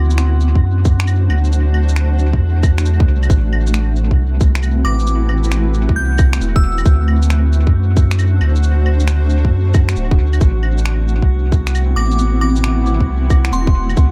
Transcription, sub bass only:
Already playing: D2
0.55 F#2
1.29 D2
2.33 F#2
2.41 E2
3.08 C2
3.30 A1
4.11 C2
4.85 A1
5.89 C2
6.41 E1
6.86 D2
7.67 F#2
8.41 D2
9.45 F#2
9.96 D1
10.19 D2
10.41 A1
11.22 C2
11.96 A1
13.00 C2
13.52 E1
13.97 D2

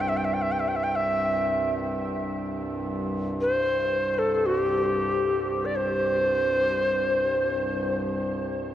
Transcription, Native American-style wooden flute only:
0.00 G5
0.08 E5
0.17 G5
0.24 E5
0.34 G5
0.41 E5
0.52 G5
0.59 E5
0.68 G5
0.76 E5
0.84 G5
0.92 E5 G5
3.41 C5
4.14 C5
4.19 A4
4.34 A4
4.46 F#4
4.57 G4
5.65 D5
5.76 C5

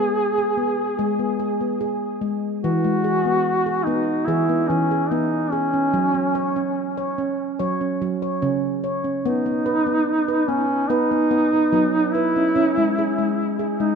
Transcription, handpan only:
Already playing: G#3 B3
0.38 G#4
0.57 B3
0.99 G#3 G#4
1.19 B3
1.40 G#4
1.61 B3
1.81 G#4
2.21 G#3
2.64 E3
2.84 G#3
3.04 G#4
3.25 B3
3.66 G#4
3.87 B3
4.28 E3 G#4
4.49 B3
4.70 E3
4.91 G#4
5.11 B3
5.53 G#4
5.74 C#4
5.94 F#3
6.15 C#4
6.35 C#5
6.56 C#4
6.98 C#5
7.18 C#4
7.59 F#3 C#5
7.81 C#4
8.02 F#3
8.22 C#5
8.42 C#3 C#4
8.84 C#5
9.04 C#4
9.26 B3
9.46 B3
9.66 B4
9.87 B3
10.28 B4
10.49 B3
10.90 B3 B4
11.12 B3
11.31 B3
11.53 B4
11.72 F#3 B3
12.15 B4
12.36 C#4
12.56 C#4
12.77 G#3
12.98 G#4
13.18 G#3
13.59 G#4
13.80 G#3

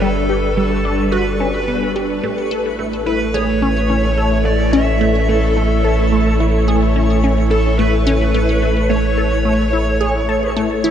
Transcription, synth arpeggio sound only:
0.02 G3
0.29 G4
0.57 G3
0.85 D4
1.12 F#4
1.40 C#4
1.68 B3
1.96 G4
2.24 A3
2.51 A4
2.79 A3
3.07 E4
3.34 G#4
3.62 C#4
3.90 C#4
4.18 A4
4.45 A3
4.73 C#4
5.01 A3
5.29 A3
5.57 A3
5.84 A4
6.12 A3
6.40 E4
6.68 G#4
6.96 C#4
7.24 C#4
7.51 A4
7.79 A3
8.07 C#4
8.34 A3
8.62 A3
8.90 A3
9.18 A4
9.45 A3
9.73 E4
10.01 G#4
10.29 A4
10.57 A3
10.84 E4

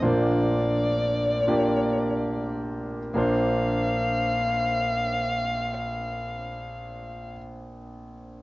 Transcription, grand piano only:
0.02 A#1 A#2 A#3 D4 F4 C5
1.47 A#3 D4 F4 G4
3.14 A#1 A#3 D4 F4 C5

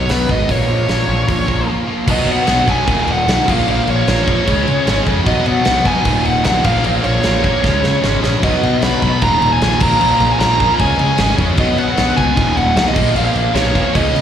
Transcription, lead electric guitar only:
Already playing: C#5
0.10 B4
0.31 D#5
0.51 C#5
2.11 D#5
2.32 F#5
2.70 G#5
3.12 F#5
3.31 F#5
3.50 F5
3.71 F5
3.90 C#5
5.27 D#5
5.46 F#5
5.87 G#5
6.26 F#5
6.45 F#5
6.65 F5
6.84 F5
7.04 C#5
8.44 D#5
8.83 B5
9.23 A#5
9.52 G#5
9.82 A#5
10.32 G#5
10.39 A#5
10.80 G#5
11.60 D#5
11.78 F#5
12.17 G#5
12.57 F#5
12.77 F#5
12.88 D#5
13.16 F5
13.25 F5
13.55 C#5
13.96 D#5

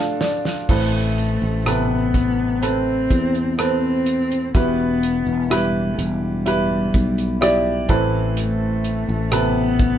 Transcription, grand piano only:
Already playing: D2 A2 D4 F4 G4 A4 F5 A5
0.21 D5
0.69 A2 E3 C4 A4 B4
1.66 C3 A4 B4
2.62 C4 A4 B4
3.58 C4 A4 B4
4.55 B2 E4 G4 B4
5.50 E4 G4 B4
6.46 E4 G4 B4
7.41 E4 G4 D5
7.89 A2 E3 C4 A4 B4
9.32 C3 A4 B4

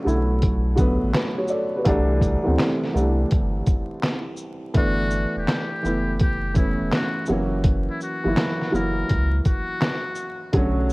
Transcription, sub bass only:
0.06 B1
1.03 A1
1.87 C2
2.48 D2
2.95 C2
3.33 G1
4.76 G1
5.36 E1
5.85 F#1
6.81 E1
7.29 F#1
8.26 G1
8.74 F#1
9.11 C#2
10.54 B1

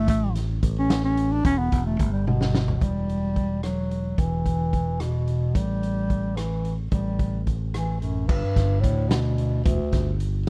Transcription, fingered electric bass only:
0.08 A1
0.63 A1
1.45 E1
1.72 E1
2.00 G1
2.81 E1
4.18 E1
5.55 A1
6.92 A1
8.29 G1
8.56 G1
8.84 D2
9.66 E1
9.93 G1

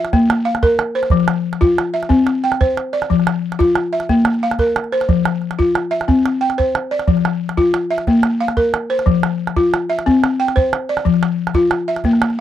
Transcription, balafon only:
Already playing: E5
0.13 A#3
0.45 F5
0.63 A#4
0.95 C5
1.11 F3
1.61 F4
1.94 E5
2.09 C4
2.44 G5
2.61 C5
2.93 D5
3.10 F3
3.59 F4
3.93 E5
4.09 A#3
4.43 F5
4.59 A#4
4.92 C5
5.09 F3
5.59 F4
5.91 E5
6.08 C4
6.41 G5
6.58 C5
6.91 D5
7.08 F3
7.57 F4
7.91 E5
8.08 A#3
8.40 F5
8.57 A#4
8.90 C5
9.06 F3
9.57 F4
9.90 E5
10.06 C4
10.40 G5
10.56 C5
10.89 D5
11.05 F3
11.55 F4
11.88 E5
12.05 A#3

